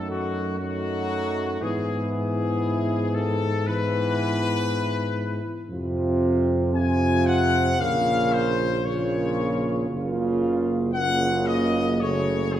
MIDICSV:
0, 0, Header, 1, 6, 480
1, 0, Start_track
1, 0, Tempo, 1020408
1, 760, Time_signature, 4, 2, 24, 8
1, 2683, Tempo, 1050788
1, 5832, End_track
2, 0, Start_track
2, 0, Title_t, "Trumpet section"
2, 0, Program_c, 0, 61
2, 46, Note_on_c, 0, 66, 89
2, 272, Note_off_c, 0, 66, 0
2, 277, Note_on_c, 0, 66, 104
2, 748, Note_off_c, 0, 66, 0
2, 761, Note_on_c, 0, 68, 88
2, 991, Note_off_c, 0, 68, 0
2, 997, Note_on_c, 0, 68, 85
2, 1470, Note_off_c, 0, 68, 0
2, 1480, Note_on_c, 0, 69, 103
2, 1726, Note_off_c, 0, 69, 0
2, 1727, Note_on_c, 0, 71, 112
2, 2683, Note_off_c, 0, 71, 0
2, 3157, Note_on_c, 0, 80, 103
2, 3382, Note_off_c, 0, 80, 0
2, 3392, Note_on_c, 0, 78, 120
2, 3637, Note_off_c, 0, 78, 0
2, 3641, Note_on_c, 0, 77, 121
2, 3878, Note_on_c, 0, 72, 106
2, 3881, Note_off_c, 0, 77, 0
2, 4119, Note_off_c, 0, 72, 0
2, 4119, Note_on_c, 0, 73, 92
2, 4597, Note_off_c, 0, 73, 0
2, 5073, Note_on_c, 0, 78, 124
2, 5300, Note_off_c, 0, 78, 0
2, 5314, Note_on_c, 0, 75, 107
2, 5559, Note_off_c, 0, 75, 0
2, 5560, Note_on_c, 0, 73, 96
2, 5800, Note_on_c, 0, 68, 112
2, 5801, Note_off_c, 0, 73, 0
2, 5832, Note_off_c, 0, 68, 0
2, 5832, End_track
3, 0, Start_track
3, 0, Title_t, "French horn section"
3, 0, Program_c, 1, 60
3, 0, Note_on_c, 1, 63, 59
3, 271, Note_off_c, 1, 63, 0
3, 277, Note_on_c, 1, 63, 68
3, 748, Note_off_c, 1, 63, 0
3, 759, Note_on_c, 1, 64, 81
3, 1721, Note_off_c, 1, 64, 0
3, 1727, Note_on_c, 1, 64, 70
3, 2607, Note_off_c, 1, 64, 0
3, 2687, Note_on_c, 1, 65, 85
3, 3150, Note_off_c, 1, 65, 0
3, 3159, Note_on_c, 1, 65, 88
3, 3632, Note_off_c, 1, 65, 0
3, 3643, Note_on_c, 1, 65, 76
3, 4112, Note_off_c, 1, 65, 0
3, 4122, Note_on_c, 1, 65, 84
3, 4589, Note_off_c, 1, 65, 0
3, 4594, Note_on_c, 1, 65, 94
3, 5064, Note_off_c, 1, 65, 0
3, 5075, Note_on_c, 1, 65, 82
3, 5551, Note_off_c, 1, 65, 0
3, 5557, Note_on_c, 1, 66, 74
3, 5832, Note_off_c, 1, 66, 0
3, 5832, End_track
4, 0, Start_track
4, 0, Title_t, "Euphonium"
4, 0, Program_c, 2, 58
4, 0, Note_on_c, 2, 57, 65
4, 283, Note_off_c, 2, 57, 0
4, 286, Note_on_c, 2, 57, 74
4, 764, Note_on_c, 2, 59, 72
4, 772, Note_off_c, 2, 57, 0
4, 1649, Note_off_c, 2, 59, 0
4, 1729, Note_on_c, 2, 59, 80
4, 2544, Note_off_c, 2, 59, 0
4, 2680, Note_on_c, 2, 60, 84
4, 3138, Note_off_c, 2, 60, 0
4, 3154, Note_on_c, 2, 60, 69
4, 3642, Note_on_c, 2, 58, 85
4, 3649, Note_off_c, 2, 60, 0
4, 4121, Note_off_c, 2, 58, 0
4, 4125, Note_on_c, 2, 58, 80
4, 4590, Note_off_c, 2, 58, 0
4, 4597, Note_on_c, 2, 58, 83
4, 5065, Note_off_c, 2, 58, 0
4, 5074, Note_on_c, 2, 58, 91
4, 5567, Note_on_c, 2, 57, 83
4, 5573, Note_off_c, 2, 58, 0
4, 5832, Note_off_c, 2, 57, 0
4, 5832, End_track
5, 0, Start_track
5, 0, Title_t, "Trombone"
5, 0, Program_c, 3, 57
5, 0, Note_on_c, 3, 54, 69
5, 281, Note_off_c, 3, 54, 0
5, 283, Note_on_c, 3, 54, 76
5, 761, Note_on_c, 3, 52, 72
5, 768, Note_off_c, 3, 54, 0
5, 1727, Note_off_c, 3, 52, 0
5, 1732, Note_on_c, 3, 52, 86
5, 2545, Note_off_c, 3, 52, 0
5, 2685, Note_on_c, 3, 48, 86
5, 3140, Note_off_c, 3, 48, 0
5, 3156, Note_on_c, 3, 48, 90
5, 3641, Note_on_c, 3, 49, 94
5, 3648, Note_off_c, 3, 48, 0
5, 4117, Note_off_c, 3, 49, 0
5, 4119, Note_on_c, 3, 49, 84
5, 4588, Note_off_c, 3, 49, 0
5, 4601, Note_on_c, 3, 49, 85
5, 5067, Note_off_c, 3, 49, 0
5, 5076, Note_on_c, 3, 49, 87
5, 5552, Note_off_c, 3, 49, 0
5, 5564, Note_on_c, 3, 49, 89
5, 5832, Note_off_c, 3, 49, 0
5, 5832, End_track
6, 0, Start_track
6, 0, Title_t, "Tuba"
6, 0, Program_c, 4, 58
6, 0, Note_on_c, 4, 42, 67
6, 758, Note_off_c, 4, 42, 0
6, 761, Note_on_c, 4, 44, 88
6, 2540, Note_off_c, 4, 44, 0
6, 2679, Note_on_c, 4, 41, 87
6, 3620, Note_off_c, 4, 41, 0
6, 3638, Note_on_c, 4, 34, 83
6, 4578, Note_off_c, 4, 34, 0
6, 4598, Note_on_c, 4, 30, 94
6, 5832, Note_off_c, 4, 30, 0
6, 5832, End_track
0, 0, End_of_file